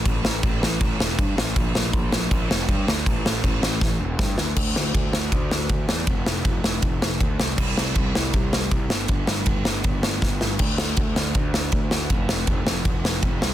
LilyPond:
<<
  \new Staff \with { instrumentName = "Picked electric bass" } { \clef bass \time 4/4 \key a \mixolydian \tempo 4 = 160 a,,8 a,,8 a,,8 a,,8 a,,8 e,,8 g,8 a,,8 | bes,,8 bes,,8 bes,,8 bes,,8 bes,,8 f,,8 g,8 d,8 | a,,8 a,,8 a,,8 a,,8 a,,8 e,,8 g,8 d,8 | d,8 d,8 d,8 d,8 d,4 d,8 e,8 |
f,,8 f,,8 f,,8 f,,8 f,,4 d,8 c,8 | c,8 c,8 c,8 c,8 c,4 c,8 g,,8 | g,,8 g,,8 g,,8 g,,8 g,,4 g,,8 g,,8 | d,8 d,8 d,8 d,8 d,4 d,8 d,8 |
f,,8 f,,8 f,,8 f,,8 f,,4 f,,8 c,8 | }
  \new DrumStaff \with { instrumentName = "Drums" } \drummode { \time 4/4 <cymc bd>8 sn8 <cymc bd>8 sn8 <cymc bd>8 sn8 <cymc bd>8 sn8 | <cymc bd>8 sn8 <cymc bd>8 sn8 <cymc bd>8 sn8 <cymc bd>8 sn8 | <cymc bd>8 sn8 <cymc bd>8 sn8 <bd sn>4 <bd sn>8 sn8 | <cymc bd>8 sn8 <bd cymr>8 sn8 <bd cymr>8 sn8 <bd cymr>8 sn8 |
<bd cymr>8 sn8 <bd cymr>8 sn8 <bd cymr>8 sn8 <bd cymr>8 sn8 | <cymc bd>8 sn8 <bd cymr>8 sn8 <bd cymr>8 sn8 <bd cymr>8 sn8 | <bd cymr>8 sn8 <bd cymr>8 sn8 <bd cymr>8 sn8 <bd sn>8 sn8 | <cymc bd>8 sn8 <bd cymr>8 sn8 <bd cymr>8 sn8 <bd cymr>8 sn8 |
<bd cymr>8 sn8 <bd cymr>8 sn8 <bd cymr>8 sn8 <bd cymr>8 sn8 | }
>>